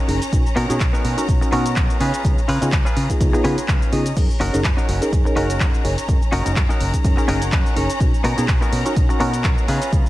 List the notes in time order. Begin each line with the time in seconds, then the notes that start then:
Already playing: C#4 A#5
0.08 F#1 C#4 D#4 G#4 A#4, open hi-hat
0.22 closed hi-hat, shaker
0.32 B1 C#4 D#4 F#4 A#4, kick, closed hi-hat, shaker
0.46 shaker
0.56 B2 B3 D#4 F#4 A#4, open hi-hat
0.69 B2 C#4 D#4 F#4 G#4, closed hi-hat, shaker
0.80 B1, kick, clap, closed hi-hat, shaker
0.93 B3 D#4 F#4 A#4, shaker
1.04 B2, open hi-hat
1.17 C#4 D#4 F#4 A#4, closed hi-hat, shaker
1.28 B1, kick, closed hi-hat, shaker
1.41 C#4 D#4 F#4 A#4, muted clean electric guitar stroke, shaker
1.52 B2 B3 C#4 D#4 F#4 A#4, open hi-hat
1.66 closed hi-hat, shaker
1.76 B1, kick, clap, closed hi-hat, shaker
1.90 shaker
2.00 C#3 B3 C#4 D#4 F4 G#4 B4, open hi-hat
2.14 closed hi-hat, shaker
2.24 C#2 B3 D#4 F4 G#4, kick, closed hi-hat, shaker
2.38 shaker
2.48 C#3 C#4 F4 G#4 B4, open hi-hat
2.61 C#3 B3 D#4 F4 G#4, closed hi-hat, shaker
2.72 C#2, kick, clap, closed hi-hat, shaker
2.85 C#4 F4 G#4 B4, shaker
2.97 C#3, open hi-hat
3.10 B3 D#4 F4 G#4, kick, closed hi-hat, shaker
3.20 C#2, kick, closed hi-hat, shaker
3.33 B3 D#4 F4 G#4, muted clean electric guitar stroke, shaker
3.44 C#3 B3 C#4 D#4 F4 G#4 B4 G#5, open hi-hat
3.58 muted fingered electric bass stroke, closed hi-hat, shaker
3.68 C#2 F5, kick, clap, closed hi-hat, shaker
3.82 shaker
3.92 C#3 B3 D#4 F4 G#4 D#5, open hi-hat
4.06 closed hi-hat, shaker
4.16 F#2 C#4 D#4 G#4 A#4 A#5, kick, closed hi-hat, crash, shaker
4.30 shaker
4.40 F#1 C#4 D#4 F#4 A#4, open hi-hat
4.53 F#1 C#4 D#4 G#4 A#4, closed hi-hat, shaker
4.64 F#2, kick, clap, closed hi-hat, shaker
4.77 C#4 D#4 F#4 A#4, shaker
4.89 F#1, open hi-hat
5.01 C#4 D#4 G#4 A#4, closed hi-hat, shaker
5.13 F#2, kick, closed hi-hat, shaker
5.25 C#4 D#4 G#4 A#4, muted clean electric guitar stroke, shaker
5.36 F#1 C#4 D#4 F#4 G#4 A#4, open hi-hat
5.50 closed hi-hat, shaker
5.60 F#2, kick, clap, closed hi-hat, shaker
5.74 shaker
5.84 F#1 C#4 D#4 G#4 A#4, open hi-hat
5.98 closed hi-hat, shaker
6.08 F#2 C#4 D#4 G#4 A#4, kick, closed hi-hat, shaker
6.22 shaker
6.32 F#1 C#4 D#4 F#4 A#4, open hi-hat
6.45 F#1 C#4 D#4 G#4 A#4, closed hi-hat, shaker
6.56 F#2, kick, clap, closed hi-hat, shaker
6.69 C#4 D#4 F#4 A#4, shaker
6.80 F#1, open hi-hat
6.93 C#4 D#4 G#4 A#4, kick, closed hi-hat, shaker
7.04 F#2, kick, closed hi-hat, shaker
7.17 C#4 D#4 G#4 A#4, muted clean electric guitar stroke, shaker
7.28 F#1 C#4 D#4 F#4 G#4 A#4 G#5, open hi-hat
7.42 closed hi-hat, shaker
7.52 F#2 F#5, kick, clap, closed hi-hat, shaker
7.66 shaker
7.76 F#1 C#4 D#4 G#4 A#4 C#5, open hi-hat
7.90 closed hi-hat, shaker
8.00 B1 C#4 D#4 F#4 A#4, kick, closed hi-hat, shaker
8.14 shaker
8.24 B2 B3 D#4 F#4 A#4, open hi-hat
8.37 B2 C#4 D#4 F#4 G#4, closed hi-hat, shaker
8.48 B1, kick, clap, closed hi-hat, shaker
8.61 B3 D#4 F#4 A#4, shaker
8.72 B2, open hi-hat
8.85 C#4 D#4 F#4 A#4, closed hi-hat, shaker
8.96 B1, kick, closed hi-hat, shaker
9.09 C#4 D#4 F#4 A#4, muted clean electric guitar stroke, shaker
9.20 B2 B3 C#4 D#4 F#4 A#4, open hi-hat
9.34 closed hi-hat, shaker
9.44 B1, kick, clap, closed hi-hat, shaker
9.58 shaker
9.68 C#3 B3 C#4 D#4 F4 G#4 B4, open hi-hat
9.82 closed hi-hat, shaker
9.92 C#2 B3 D#4 F4 G#4, kick, closed hi-hat, shaker
10.06 shaker